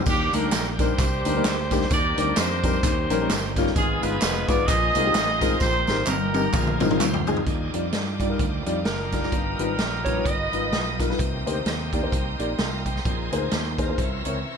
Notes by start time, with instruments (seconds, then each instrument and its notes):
0.06 fingered electric bass D#2, grand piano D#3, tonewheel organ G3 A#3 D4 F4, horn section A#3 D4 G4, kick, tambourine, crash
0.12 tonewheel organ G4
0.33 fingered electric bass D2, grand piano G3 A#3 D4 D#4 A#4, horn section D4 G4 A#4, closed hi-hat, tambourine
0.52 fingered electric bass A#1, snare, clap, closed hi-hat, tambourine
0.79 grand piano G3 A#3 D4 D#4 A#4, horn section G4 C5, kick, closed hi-hat, tambourine
0.98 fingered electric bass C2, kick, clap, closed hi-hat, tambourine
1.25 fingered electric bass D2, grand piano G3 A#3 D4 D#4 A#4, closed hi-hat, tambourine
1.36 grand piano G3 A#3 D4 D#4 A#4
1.44 fingered electric bass D2, snare, clap, closed hi-hat, tambourine
1.71 grand piano G3 A#3 D4 D#4 G4, kick, snare, closed hi-hat, tambourine
1.81 snare
1.90 fingered electric bass D#2, tonewheel organ D#3 A#3 C4 D4 G4, grand piano D#3, horn section G4 A#4 D5, kick, closed hi-hat, tambourine
2.18 fingered electric bass D2, grand piano G3 C4 D4 D#4 A#4, horn section D5, closed hi-hat, tambourine
2.36 fingered electric bass F2, horn section G4 C5, snare, clap, closed hi-hat, tambourine
2.64 grand piano G3 C4 D4 D#4 A#4, kick, closed hi-hat, tambourine
2.83 fingered electric bass D#2, grand piano D#3, tonewheel organ D#3 G3 A#3 C#4 G4, kick, clap, closed hi-hat, tambourine
3.10 fingered electric bass A#1, grand piano G3 A#3 C#4 D#4 A#4, closed hi-hat, tambourine
3.21 grand piano G3 A#3 C#4 D#4 A#4
3.30 fingered electric bass G1, snare, clap, closed hi-hat, tambourine
3.56 grand piano G3 A#3 C#4 D#4 F4, kick, snare, closed hi-hat, tambourine
3.67 snare
3.75 fingered electric bass G#1, grand piano G#2, tonewheel organ F3 G#3 B3 D#4 G#4, horn section B3 F4 G#4, kick, closed hi-hat, tambourine
4.02 fingered electric bass G1, grand piano G#3 B3 D#4 F4 B4, horn section D#4 F4 B4, closed hi-hat, tambourine
4.22 fingered electric bass F1, snare, clap, closed hi-hat, tambourine
4.48 fingered electric bass G#1, grand piano G#3 B3 D#4 F4 B4, horn section D5, kick, closed hi-hat, tambourine
4.66 fingered electric bass A#1, grand piano A#2, tonewheel organ F3 A#3 C4 D#4 G#4, horn section G#4 C5 D#5, kick, clap, closed hi-hat, tambourine
4.95 fingered electric bass C2, grand piano G#3 C4 D#4 F4 A#4, closed hi-hat, tambourine
5.05 grand piano G#3 C4 D#4 F4 G4
5.15 fingered electric bass A1, snare, clap, closed hi-hat, tambourine
5.41 grand piano G#3 C4 D#4 F4 A#4, kick, snare, closed hi-hat, tambourine
5.59 fingered electric bass A#1, grand piano A#2, tonewheel organ A#3 D#4 G4, horn section D#4 G4 C5, kick, snare, tambourine
5.87 fingered electric bass G#1, grand piano D#4 G4 A#4, snare, tambourine
6.07 fingered electric bass G1, horn section D#4 G4 A#4, clap, high tom, tambourine
6.34 grand piano D#4 G4 A#4, high tom, tambourine
6.53 fingered electric bass A#1, grand piano A#2, tonewheel organ F3 A#3 C4 D#4 G#4, kick, clap, mid tom, tambourine
6.67 mid tom
6.80 fingered electric bass G#1, grand piano G#3 C4 D#4 F4 A#4, mid tom, tambourine
6.90 grand piano G#3 C4 D#4 F4 A#4, mid tom
7.00 fingered electric bass D2, tonewheel organ G4 C5, clap, mid tom, tambourine
7.14 floor tom
7.27 grand piano G#3 C4 D#4 F4 G#4, tonewheel organ D#4 G#4, floor tom, tambourine
7.36 floor tom
7.46 fingered electric bass D#2, grand piano D#3, tonewheel organ D#3 G3 D4 F4, string section F5 G5 D6 D#6, kick, closed hi-hat
7.74 fingered electric bass F2, grand piano G3 D#4 F4 D5, closed hi-hat
7.92 fingered electric bass G2, snare, closed hi-hat
8.20 grand piano G3 D#4 F4 D5, kick, closed hi-hat
8.30 grand piano G3 D#4 F4 A#4
8.39 fingered electric bass D2, kick, closed hi-hat
8.66 fingered electric bass F2, grand piano G3 D#4 F4 D5, closed hi-hat
8.85 fingered electric bass F#1, horn section D4 G4 A#4, electric slide guitar A#4, snare, closed hi-hat
9.12 grand piano G3 D#4 F4 D5, kick, snare, closed hi-hat
9.23 grand piano G3 D#4 F4 D5, snare
9.32 fingered electric bass G1, grand piano G2, tonewheel organ D#3 G3 B3 F4, kick, closed hi-hat
9.59 fingered electric bass G#1, grand piano G3 D#4 F4 B4, closed hi-hat
9.79 fingered electric bass A#1, snare, closed hi-hat
10.05 grand piano G3 D#4 F4 B4, electric slide guitar C#5, kick, closed hi-hat
10.16 grand piano G3 D#4 F4 B4
10.25 fingered electric bass G1, horn section A#4 B4 D#5, electric slide guitar D#5, kick, closed hi-hat
10.52 fingered electric bass G#1, grand piano G3 D#4 F4 B4, closed hi-hat
10.72 fingered electric bass B1, snare, closed hi-hat
11.00 grand piano G3 D#4 F4 A#4, kick, snare, closed hi-hat
11.10 grand piano G3 D#4 F4 B4, snare
11.18 fingered electric bass C2, grand piano C3, tonewheel organ D#3 A#3 C4 G4, string section G5 A#5 C6, kick, closed hi-hat
11.46 fingered electric bass D2, grand piano A#3 D#4 G4 C5, closed hi-hat
11.66 fingered electric bass D#2, snare, closed hi-hat
11.93 grand piano A#3 D#4 G4 D5, kick, closed hi-hat
12.03 grand piano A#3 D#4 G4 C5
12.12 fingered electric bass C2, kick, closed hi-hat
12.39 fingered electric bass A#1, grand piano A#3 D#4 G4 D5, closed hi-hat
12.59 fingered electric bass C2, tonewheel organ F4 A#4, grand piano C6, snare, closed hi-hat
12.86 tonewheel organ G4 C5, grand piano G5, kick, closed hi-hat
12.96 snare
13.05 fingered electric bass A#1, grand piano A#2, tonewheel organ D#3 A#3 C4 G4, string section G#5, kick, closed hi-hat
13.11 tonewheel organ G#4
13.32 fingered electric bass D2, grand piano A#3 D#4 G#4 C5, closed hi-hat
13.51 fingered electric bass D#2, tonewheel organ G4 C5, snare, closed hi-hat
13.78 grand piano A#3 D#4 G#4 C5, tonewheel organ F4 A#4, kick, closed hi-hat
13.89 grand piano A#3 D#4 G#4 C5
13.98 fingered electric bass C2, grand piano C3, tonewheel organ E3 C4 C#4 A4, string section C#6 E6, kick, closed hi-hat
14.03 tonewheel organ A#4
14.25 fingered electric bass C#2, grand piano C4 E4 A#4 C#5, closed hi-hat
14.45 grand piano E5